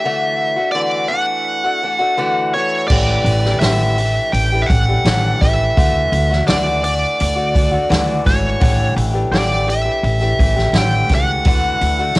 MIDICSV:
0, 0, Header, 1, 5, 480
1, 0, Start_track
1, 0, Key_signature, 2, "major"
1, 0, Tempo, 712589
1, 32, Time_signature, 4, 2, 24, 8
1, 8215, End_track
2, 0, Start_track
2, 0, Title_t, "Lead electric guitar"
2, 0, Program_c, 0, 29
2, 0, Note_on_c, 0, 76, 103
2, 470, Note_off_c, 0, 76, 0
2, 482, Note_on_c, 0, 74, 96
2, 730, Note_on_c, 0, 78, 106
2, 747, Note_off_c, 0, 74, 0
2, 1709, Note_on_c, 0, 73, 90
2, 1735, Note_off_c, 0, 78, 0
2, 1935, Note_off_c, 0, 73, 0
2, 1938, Note_on_c, 0, 74, 85
2, 2418, Note_off_c, 0, 74, 0
2, 2421, Note_on_c, 0, 76, 91
2, 2911, Note_on_c, 0, 79, 97
2, 2926, Note_off_c, 0, 76, 0
2, 3110, Note_on_c, 0, 76, 74
2, 3115, Note_off_c, 0, 79, 0
2, 3141, Note_on_c, 0, 78, 95
2, 3159, Note_off_c, 0, 76, 0
2, 3644, Note_on_c, 0, 76, 99
2, 3646, Note_off_c, 0, 78, 0
2, 4336, Note_off_c, 0, 76, 0
2, 4362, Note_on_c, 0, 74, 89
2, 4600, Note_off_c, 0, 74, 0
2, 4608, Note_on_c, 0, 74, 89
2, 5565, Note_off_c, 0, 74, 0
2, 5567, Note_on_c, 0, 73, 88
2, 6017, Note_off_c, 0, 73, 0
2, 6280, Note_on_c, 0, 74, 90
2, 6526, Note_off_c, 0, 74, 0
2, 6531, Note_on_c, 0, 76, 94
2, 7259, Note_on_c, 0, 79, 106
2, 7265, Note_off_c, 0, 76, 0
2, 7495, Note_off_c, 0, 79, 0
2, 7509, Note_on_c, 0, 78, 105
2, 8184, Note_off_c, 0, 78, 0
2, 8215, End_track
3, 0, Start_track
3, 0, Title_t, "Steel-string acoustic guitar"
3, 0, Program_c, 1, 25
3, 31, Note_on_c, 1, 50, 77
3, 36, Note_on_c, 1, 52, 83
3, 37, Note_on_c, 1, 57, 91
3, 37, Note_on_c, 1, 66, 89
3, 39, Note_on_c, 1, 62, 84
3, 371, Note_off_c, 1, 66, 0
3, 379, Note_on_c, 1, 66, 57
3, 381, Note_off_c, 1, 62, 0
3, 389, Note_on_c, 1, 62, 57
3, 391, Note_off_c, 1, 57, 0
3, 393, Note_off_c, 1, 50, 0
3, 396, Note_off_c, 1, 52, 0
3, 400, Note_on_c, 1, 57, 46
3, 496, Note_off_c, 1, 62, 0
3, 497, Note_off_c, 1, 57, 0
3, 498, Note_off_c, 1, 66, 0
3, 501, Note_on_c, 1, 50, 80
3, 503, Note_on_c, 1, 52, 78
3, 504, Note_on_c, 1, 62, 92
3, 505, Note_on_c, 1, 57, 83
3, 506, Note_on_c, 1, 66, 84
3, 731, Note_off_c, 1, 52, 0
3, 738, Note_off_c, 1, 57, 0
3, 739, Note_off_c, 1, 62, 0
3, 739, Note_on_c, 1, 52, 63
3, 746, Note_on_c, 1, 57, 62
3, 747, Note_off_c, 1, 66, 0
3, 748, Note_on_c, 1, 62, 66
3, 749, Note_off_c, 1, 50, 0
3, 756, Note_on_c, 1, 66, 64
3, 1097, Note_off_c, 1, 66, 0
3, 1105, Note_on_c, 1, 66, 52
3, 1108, Note_off_c, 1, 57, 0
3, 1109, Note_off_c, 1, 52, 0
3, 1109, Note_off_c, 1, 62, 0
3, 1116, Note_on_c, 1, 57, 46
3, 1118, Note_on_c, 1, 62, 47
3, 1225, Note_off_c, 1, 57, 0
3, 1230, Note_off_c, 1, 62, 0
3, 1230, Note_on_c, 1, 52, 53
3, 1231, Note_off_c, 1, 66, 0
3, 1233, Note_on_c, 1, 57, 57
3, 1238, Note_on_c, 1, 62, 59
3, 1242, Note_on_c, 1, 66, 62
3, 1332, Note_off_c, 1, 66, 0
3, 1339, Note_off_c, 1, 62, 0
3, 1340, Note_on_c, 1, 66, 59
3, 1347, Note_on_c, 1, 62, 52
3, 1348, Note_off_c, 1, 57, 0
3, 1354, Note_off_c, 1, 52, 0
3, 1356, Note_on_c, 1, 57, 54
3, 1456, Note_off_c, 1, 57, 0
3, 1463, Note_off_c, 1, 62, 0
3, 1463, Note_on_c, 1, 50, 90
3, 1464, Note_on_c, 1, 57, 87
3, 1465, Note_off_c, 1, 66, 0
3, 1467, Note_on_c, 1, 52, 90
3, 1471, Note_on_c, 1, 62, 99
3, 1473, Note_on_c, 1, 66, 89
3, 1709, Note_off_c, 1, 52, 0
3, 1711, Note_off_c, 1, 50, 0
3, 1711, Note_off_c, 1, 57, 0
3, 1715, Note_off_c, 1, 62, 0
3, 1716, Note_off_c, 1, 66, 0
3, 1717, Note_on_c, 1, 52, 60
3, 1724, Note_on_c, 1, 57, 70
3, 1725, Note_on_c, 1, 62, 68
3, 1726, Note_on_c, 1, 66, 64
3, 1953, Note_off_c, 1, 52, 0
3, 1955, Note_off_c, 1, 62, 0
3, 1957, Note_off_c, 1, 57, 0
3, 1961, Note_off_c, 1, 66, 0
3, 1961, Note_on_c, 1, 50, 82
3, 1961, Note_on_c, 1, 52, 78
3, 1962, Note_on_c, 1, 45, 83
3, 1963, Note_on_c, 1, 62, 89
3, 1963, Note_on_c, 1, 67, 87
3, 1965, Note_on_c, 1, 57, 87
3, 2321, Note_off_c, 1, 50, 0
3, 2321, Note_off_c, 1, 52, 0
3, 2322, Note_off_c, 1, 45, 0
3, 2322, Note_off_c, 1, 62, 0
3, 2322, Note_off_c, 1, 67, 0
3, 2323, Note_off_c, 1, 57, 0
3, 2330, Note_on_c, 1, 67, 52
3, 2335, Note_on_c, 1, 52, 49
3, 2335, Note_on_c, 1, 62, 58
3, 2336, Note_on_c, 1, 57, 51
3, 2437, Note_off_c, 1, 62, 0
3, 2438, Note_off_c, 1, 52, 0
3, 2441, Note_off_c, 1, 57, 0
3, 2443, Note_on_c, 1, 45, 74
3, 2444, Note_on_c, 1, 50, 83
3, 2445, Note_off_c, 1, 67, 0
3, 2445, Note_on_c, 1, 62, 82
3, 2446, Note_on_c, 1, 52, 79
3, 2449, Note_on_c, 1, 57, 81
3, 2453, Note_on_c, 1, 67, 87
3, 2671, Note_off_c, 1, 52, 0
3, 2676, Note_off_c, 1, 57, 0
3, 2679, Note_on_c, 1, 52, 66
3, 2681, Note_off_c, 1, 67, 0
3, 2682, Note_off_c, 1, 45, 0
3, 2683, Note_off_c, 1, 50, 0
3, 2683, Note_off_c, 1, 62, 0
3, 2684, Note_on_c, 1, 57, 65
3, 2689, Note_on_c, 1, 67, 66
3, 2693, Note_on_c, 1, 62, 63
3, 3037, Note_off_c, 1, 67, 0
3, 3040, Note_off_c, 1, 52, 0
3, 3043, Note_off_c, 1, 57, 0
3, 3044, Note_off_c, 1, 62, 0
3, 3045, Note_on_c, 1, 67, 50
3, 3052, Note_on_c, 1, 62, 48
3, 3057, Note_on_c, 1, 57, 46
3, 3061, Note_on_c, 1, 52, 40
3, 3149, Note_off_c, 1, 52, 0
3, 3157, Note_on_c, 1, 52, 61
3, 3162, Note_off_c, 1, 57, 0
3, 3163, Note_off_c, 1, 67, 0
3, 3165, Note_off_c, 1, 62, 0
3, 3170, Note_on_c, 1, 57, 58
3, 3172, Note_on_c, 1, 67, 61
3, 3173, Note_on_c, 1, 62, 64
3, 3279, Note_off_c, 1, 52, 0
3, 3282, Note_off_c, 1, 67, 0
3, 3283, Note_off_c, 1, 62, 0
3, 3286, Note_off_c, 1, 57, 0
3, 3291, Note_on_c, 1, 62, 52
3, 3291, Note_on_c, 1, 67, 50
3, 3299, Note_on_c, 1, 52, 47
3, 3300, Note_on_c, 1, 57, 47
3, 3401, Note_off_c, 1, 52, 0
3, 3404, Note_off_c, 1, 57, 0
3, 3404, Note_on_c, 1, 45, 74
3, 3406, Note_off_c, 1, 62, 0
3, 3406, Note_off_c, 1, 67, 0
3, 3408, Note_on_c, 1, 50, 77
3, 3409, Note_on_c, 1, 52, 79
3, 3412, Note_on_c, 1, 57, 74
3, 3415, Note_on_c, 1, 62, 84
3, 3418, Note_on_c, 1, 67, 77
3, 3638, Note_off_c, 1, 52, 0
3, 3640, Note_off_c, 1, 62, 0
3, 3643, Note_off_c, 1, 45, 0
3, 3643, Note_off_c, 1, 57, 0
3, 3645, Note_off_c, 1, 50, 0
3, 3646, Note_on_c, 1, 52, 59
3, 3648, Note_on_c, 1, 62, 67
3, 3650, Note_off_c, 1, 67, 0
3, 3651, Note_on_c, 1, 57, 62
3, 3659, Note_on_c, 1, 67, 71
3, 3879, Note_off_c, 1, 52, 0
3, 3880, Note_off_c, 1, 57, 0
3, 3885, Note_off_c, 1, 62, 0
3, 3885, Note_on_c, 1, 50, 79
3, 3887, Note_on_c, 1, 52, 79
3, 3888, Note_on_c, 1, 57, 86
3, 3891, Note_off_c, 1, 67, 0
3, 3894, Note_on_c, 1, 62, 87
3, 3897, Note_on_c, 1, 66, 93
3, 4238, Note_off_c, 1, 66, 0
3, 4243, Note_off_c, 1, 62, 0
3, 4244, Note_off_c, 1, 50, 0
3, 4245, Note_off_c, 1, 52, 0
3, 4245, Note_off_c, 1, 57, 0
3, 4246, Note_on_c, 1, 66, 57
3, 4251, Note_on_c, 1, 62, 54
3, 4257, Note_on_c, 1, 57, 45
3, 4353, Note_on_c, 1, 50, 74
3, 4355, Note_off_c, 1, 57, 0
3, 4357, Note_off_c, 1, 62, 0
3, 4359, Note_off_c, 1, 66, 0
3, 4362, Note_on_c, 1, 52, 79
3, 4363, Note_on_c, 1, 57, 83
3, 4365, Note_on_c, 1, 62, 81
3, 4367, Note_on_c, 1, 66, 97
3, 4590, Note_off_c, 1, 52, 0
3, 4597, Note_off_c, 1, 50, 0
3, 4598, Note_off_c, 1, 57, 0
3, 4598, Note_on_c, 1, 52, 57
3, 4599, Note_off_c, 1, 62, 0
3, 4601, Note_off_c, 1, 66, 0
3, 4606, Note_on_c, 1, 57, 60
3, 4607, Note_on_c, 1, 62, 66
3, 4609, Note_on_c, 1, 66, 66
3, 4949, Note_off_c, 1, 66, 0
3, 4957, Note_on_c, 1, 66, 57
3, 4958, Note_off_c, 1, 62, 0
3, 4959, Note_off_c, 1, 57, 0
3, 4960, Note_off_c, 1, 52, 0
3, 4966, Note_on_c, 1, 62, 48
3, 4967, Note_on_c, 1, 57, 50
3, 5075, Note_off_c, 1, 62, 0
3, 5076, Note_off_c, 1, 57, 0
3, 5079, Note_off_c, 1, 66, 0
3, 5079, Note_on_c, 1, 52, 58
3, 5083, Note_on_c, 1, 62, 64
3, 5084, Note_on_c, 1, 57, 58
3, 5091, Note_on_c, 1, 66, 65
3, 5188, Note_off_c, 1, 66, 0
3, 5196, Note_on_c, 1, 66, 60
3, 5198, Note_off_c, 1, 62, 0
3, 5200, Note_off_c, 1, 52, 0
3, 5203, Note_off_c, 1, 57, 0
3, 5206, Note_on_c, 1, 62, 58
3, 5211, Note_on_c, 1, 57, 53
3, 5313, Note_off_c, 1, 57, 0
3, 5316, Note_off_c, 1, 66, 0
3, 5317, Note_on_c, 1, 52, 94
3, 5319, Note_off_c, 1, 62, 0
3, 5319, Note_on_c, 1, 50, 77
3, 5321, Note_on_c, 1, 57, 100
3, 5324, Note_on_c, 1, 66, 100
3, 5327, Note_on_c, 1, 62, 90
3, 5545, Note_off_c, 1, 52, 0
3, 5549, Note_off_c, 1, 62, 0
3, 5550, Note_off_c, 1, 57, 0
3, 5553, Note_on_c, 1, 52, 66
3, 5555, Note_off_c, 1, 66, 0
3, 5557, Note_on_c, 1, 62, 68
3, 5558, Note_on_c, 1, 57, 69
3, 5560, Note_off_c, 1, 50, 0
3, 5563, Note_on_c, 1, 66, 72
3, 5787, Note_off_c, 1, 57, 0
3, 5790, Note_off_c, 1, 62, 0
3, 5791, Note_off_c, 1, 52, 0
3, 5794, Note_on_c, 1, 50, 82
3, 5795, Note_on_c, 1, 57, 88
3, 5796, Note_on_c, 1, 45, 88
3, 5798, Note_on_c, 1, 62, 88
3, 5799, Note_on_c, 1, 52, 88
3, 5802, Note_off_c, 1, 66, 0
3, 5805, Note_on_c, 1, 67, 84
3, 6146, Note_off_c, 1, 67, 0
3, 6152, Note_off_c, 1, 62, 0
3, 6154, Note_on_c, 1, 67, 63
3, 6156, Note_off_c, 1, 52, 0
3, 6157, Note_off_c, 1, 45, 0
3, 6157, Note_off_c, 1, 50, 0
3, 6157, Note_off_c, 1, 57, 0
3, 6160, Note_on_c, 1, 62, 57
3, 6164, Note_on_c, 1, 57, 52
3, 6165, Note_on_c, 1, 52, 52
3, 6271, Note_off_c, 1, 52, 0
3, 6271, Note_off_c, 1, 57, 0
3, 6277, Note_off_c, 1, 62, 0
3, 6277, Note_off_c, 1, 67, 0
3, 6277, Note_on_c, 1, 45, 81
3, 6279, Note_on_c, 1, 52, 84
3, 6279, Note_on_c, 1, 57, 82
3, 6282, Note_on_c, 1, 50, 81
3, 6285, Note_on_c, 1, 62, 93
3, 6289, Note_on_c, 1, 67, 83
3, 6502, Note_off_c, 1, 52, 0
3, 6507, Note_off_c, 1, 62, 0
3, 6510, Note_on_c, 1, 52, 68
3, 6511, Note_off_c, 1, 57, 0
3, 6514, Note_off_c, 1, 67, 0
3, 6515, Note_on_c, 1, 62, 66
3, 6518, Note_off_c, 1, 45, 0
3, 6519, Note_on_c, 1, 57, 61
3, 6521, Note_off_c, 1, 50, 0
3, 6522, Note_on_c, 1, 67, 74
3, 6627, Note_off_c, 1, 67, 0
3, 6629, Note_off_c, 1, 62, 0
3, 6630, Note_off_c, 1, 57, 0
3, 6635, Note_off_c, 1, 52, 0
3, 6635, Note_on_c, 1, 67, 53
3, 6637, Note_on_c, 1, 62, 50
3, 6638, Note_on_c, 1, 57, 45
3, 6644, Note_on_c, 1, 52, 43
3, 6869, Note_off_c, 1, 67, 0
3, 6875, Note_off_c, 1, 62, 0
3, 6878, Note_off_c, 1, 57, 0
3, 6878, Note_on_c, 1, 67, 59
3, 6881, Note_off_c, 1, 52, 0
3, 6883, Note_on_c, 1, 62, 49
3, 6885, Note_on_c, 1, 57, 45
3, 6891, Note_on_c, 1, 52, 49
3, 6991, Note_off_c, 1, 52, 0
3, 6998, Note_off_c, 1, 62, 0
3, 6998, Note_off_c, 1, 67, 0
3, 6999, Note_on_c, 1, 52, 61
3, 7001, Note_off_c, 1, 57, 0
3, 7007, Note_on_c, 1, 62, 64
3, 7011, Note_on_c, 1, 57, 60
3, 7014, Note_on_c, 1, 67, 64
3, 7105, Note_off_c, 1, 67, 0
3, 7108, Note_off_c, 1, 62, 0
3, 7113, Note_on_c, 1, 67, 57
3, 7116, Note_off_c, 1, 52, 0
3, 7116, Note_on_c, 1, 62, 56
3, 7117, Note_off_c, 1, 57, 0
3, 7125, Note_on_c, 1, 52, 43
3, 7125, Note_on_c, 1, 57, 53
3, 7235, Note_off_c, 1, 67, 0
3, 7237, Note_off_c, 1, 62, 0
3, 7238, Note_off_c, 1, 57, 0
3, 7240, Note_on_c, 1, 45, 82
3, 7240, Note_on_c, 1, 50, 83
3, 7241, Note_off_c, 1, 52, 0
3, 7246, Note_on_c, 1, 57, 87
3, 7248, Note_on_c, 1, 52, 77
3, 7248, Note_on_c, 1, 62, 85
3, 7250, Note_on_c, 1, 67, 93
3, 7473, Note_off_c, 1, 52, 0
3, 7474, Note_off_c, 1, 57, 0
3, 7478, Note_off_c, 1, 45, 0
3, 7478, Note_off_c, 1, 50, 0
3, 7478, Note_off_c, 1, 62, 0
3, 7481, Note_on_c, 1, 52, 66
3, 7482, Note_on_c, 1, 57, 67
3, 7483, Note_off_c, 1, 67, 0
3, 7486, Note_on_c, 1, 62, 72
3, 7490, Note_on_c, 1, 67, 68
3, 7714, Note_off_c, 1, 62, 0
3, 7716, Note_off_c, 1, 52, 0
3, 7718, Note_on_c, 1, 50, 76
3, 7719, Note_off_c, 1, 57, 0
3, 7722, Note_on_c, 1, 62, 85
3, 7723, Note_off_c, 1, 67, 0
3, 7724, Note_on_c, 1, 52, 81
3, 7727, Note_on_c, 1, 57, 85
3, 7728, Note_on_c, 1, 66, 92
3, 8069, Note_off_c, 1, 66, 0
3, 8075, Note_off_c, 1, 62, 0
3, 8076, Note_off_c, 1, 50, 0
3, 8077, Note_on_c, 1, 66, 63
3, 8079, Note_off_c, 1, 52, 0
3, 8081, Note_off_c, 1, 57, 0
3, 8083, Note_on_c, 1, 62, 61
3, 8090, Note_on_c, 1, 57, 57
3, 8195, Note_off_c, 1, 57, 0
3, 8196, Note_off_c, 1, 66, 0
3, 8199, Note_off_c, 1, 62, 0
3, 8215, End_track
4, 0, Start_track
4, 0, Title_t, "Upright bass"
4, 0, Program_c, 2, 32
4, 1956, Note_on_c, 2, 33, 85
4, 2143, Note_off_c, 2, 33, 0
4, 2184, Note_on_c, 2, 33, 89
4, 2377, Note_off_c, 2, 33, 0
4, 2430, Note_on_c, 2, 33, 91
4, 2807, Note_off_c, 2, 33, 0
4, 2916, Note_on_c, 2, 33, 101
4, 3104, Note_off_c, 2, 33, 0
4, 3164, Note_on_c, 2, 33, 94
4, 3349, Note_off_c, 2, 33, 0
4, 3399, Note_on_c, 2, 33, 90
4, 3586, Note_off_c, 2, 33, 0
4, 3649, Note_on_c, 2, 33, 84
4, 3832, Note_off_c, 2, 33, 0
4, 3887, Note_on_c, 2, 38, 89
4, 4071, Note_off_c, 2, 38, 0
4, 4123, Note_on_c, 2, 38, 91
4, 4309, Note_off_c, 2, 38, 0
4, 4369, Note_on_c, 2, 38, 89
4, 4738, Note_off_c, 2, 38, 0
4, 4855, Note_on_c, 2, 38, 94
4, 5221, Note_off_c, 2, 38, 0
4, 5322, Note_on_c, 2, 38, 94
4, 5507, Note_off_c, 2, 38, 0
4, 5566, Note_on_c, 2, 32, 87
4, 5749, Note_off_c, 2, 32, 0
4, 5805, Note_on_c, 2, 33, 93
4, 5989, Note_off_c, 2, 33, 0
4, 6038, Note_on_c, 2, 33, 94
4, 6225, Note_off_c, 2, 33, 0
4, 6273, Note_on_c, 2, 33, 90
4, 6647, Note_off_c, 2, 33, 0
4, 6759, Note_on_c, 2, 33, 99
4, 6944, Note_off_c, 2, 33, 0
4, 7000, Note_on_c, 2, 33, 101
4, 7185, Note_off_c, 2, 33, 0
4, 7229, Note_on_c, 2, 33, 95
4, 7418, Note_off_c, 2, 33, 0
4, 7477, Note_on_c, 2, 37, 89
4, 7662, Note_off_c, 2, 37, 0
4, 7720, Note_on_c, 2, 38, 97
4, 7904, Note_off_c, 2, 38, 0
4, 7957, Note_on_c, 2, 38, 91
4, 8142, Note_off_c, 2, 38, 0
4, 8215, End_track
5, 0, Start_track
5, 0, Title_t, "Drums"
5, 1952, Note_on_c, 9, 49, 104
5, 1954, Note_on_c, 9, 36, 114
5, 2019, Note_off_c, 9, 49, 0
5, 2021, Note_off_c, 9, 36, 0
5, 2194, Note_on_c, 9, 46, 60
5, 2261, Note_off_c, 9, 46, 0
5, 2324, Note_on_c, 9, 38, 36
5, 2391, Note_off_c, 9, 38, 0
5, 2432, Note_on_c, 9, 46, 80
5, 2439, Note_on_c, 9, 38, 116
5, 2499, Note_off_c, 9, 46, 0
5, 2506, Note_off_c, 9, 38, 0
5, 2679, Note_on_c, 9, 46, 57
5, 2746, Note_off_c, 9, 46, 0
5, 2923, Note_on_c, 9, 46, 79
5, 2991, Note_off_c, 9, 46, 0
5, 3163, Note_on_c, 9, 36, 90
5, 3165, Note_on_c, 9, 46, 57
5, 3230, Note_off_c, 9, 36, 0
5, 3232, Note_off_c, 9, 46, 0
5, 3403, Note_on_c, 9, 46, 82
5, 3409, Note_on_c, 9, 38, 113
5, 3470, Note_off_c, 9, 46, 0
5, 3477, Note_off_c, 9, 38, 0
5, 3648, Note_on_c, 9, 36, 83
5, 3652, Note_on_c, 9, 46, 59
5, 3659, Note_on_c, 9, 38, 30
5, 3715, Note_off_c, 9, 36, 0
5, 3719, Note_off_c, 9, 46, 0
5, 3726, Note_off_c, 9, 38, 0
5, 3888, Note_on_c, 9, 36, 119
5, 3891, Note_on_c, 9, 46, 85
5, 3956, Note_off_c, 9, 36, 0
5, 3958, Note_off_c, 9, 46, 0
5, 4126, Note_on_c, 9, 46, 63
5, 4193, Note_off_c, 9, 46, 0
5, 4259, Note_on_c, 9, 38, 35
5, 4326, Note_off_c, 9, 38, 0
5, 4361, Note_on_c, 9, 46, 87
5, 4368, Note_on_c, 9, 38, 115
5, 4428, Note_off_c, 9, 46, 0
5, 4435, Note_off_c, 9, 38, 0
5, 4605, Note_on_c, 9, 46, 66
5, 4673, Note_off_c, 9, 46, 0
5, 4849, Note_on_c, 9, 46, 93
5, 4916, Note_off_c, 9, 46, 0
5, 5086, Note_on_c, 9, 36, 87
5, 5088, Note_on_c, 9, 46, 66
5, 5154, Note_off_c, 9, 36, 0
5, 5156, Note_off_c, 9, 46, 0
5, 5331, Note_on_c, 9, 46, 82
5, 5338, Note_on_c, 9, 38, 103
5, 5399, Note_off_c, 9, 46, 0
5, 5405, Note_off_c, 9, 38, 0
5, 5565, Note_on_c, 9, 36, 80
5, 5567, Note_on_c, 9, 46, 62
5, 5574, Note_on_c, 9, 38, 31
5, 5632, Note_off_c, 9, 36, 0
5, 5634, Note_off_c, 9, 46, 0
5, 5641, Note_off_c, 9, 38, 0
5, 5801, Note_on_c, 9, 46, 83
5, 5804, Note_on_c, 9, 36, 115
5, 5868, Note_off_c, 9, 46, 0
5, 5871, Note_off_c, 9, 36, 0
5, 6046, Note_on_c, 9, 46, 64
5, 6113, Note_off_c, 9, 46, 0
5, 6287, Note_on_c, 9, 46, 77
5, 6294, Note_on_c, 9, 38, 109
5, 6354, Note_off_c, 9, 46, 0
5, 6361, Note_off_c, 9, 38, 0
5, 6532, Note_on_c, 9, 46, 59
5, 6599, Note_off_c, 9, 46, 0
5, 6763, Note_on_c, 9, 46, 81
5, 6830, Note_off_c, 9, 46, 0
5, 7002, Note_on_c, 9, 36, 88
5, 7006, Note_on_c, 9, 46, 60
5, 7069, Note_off_c, 9, 36, 0
5, 7074, Note_off_c, 9, 46, 0
5, 7130, Note_on_c, 9, 38, 31
5, 7197, Note_off_c, 9, 38, 0
5, 7232, Note_on_c, 9, 46, 78
5, 7239, Note_on_c, 9, 38, 108
5, 7300, Note_off_c, 9, 46, 0
5, 7306, Note_off_c, 9, 38, 0
5, 7473, Note_on_c, 9, 46, 57
5, 7477, Note_on_c, 9, 36, 88
5, 7479, Note_on_c, 9, 38, 31
5, 7540, Note_off_c, 9, 46, 0
5, 7545, Note_off_c, 9, 36, 0
5, 7547, Note_off_c, 9, 38, 0
5, 7711, Note_on_c, 9, 46, 83
5, 7717, Note_on_c, 9, 36, 115
5, 7779, Note_off_c, 9, 46, 0
5, 7785, Note_off_c, 9, 36, 0
5, 7956, Note_on_c, 9, 46, 63
5, 8023, Note_off_c, 9, 46, 0
5, 8184, Note_on_c, 9, 46, 86
5, 8190, Note_on_c, 9, 38, 117
5, 8215, Note_off_c, 9, 38, 0
5, 8215, Note_off_c, 9, 46, 0
5, 8215, End_track
0, 0, End_of_file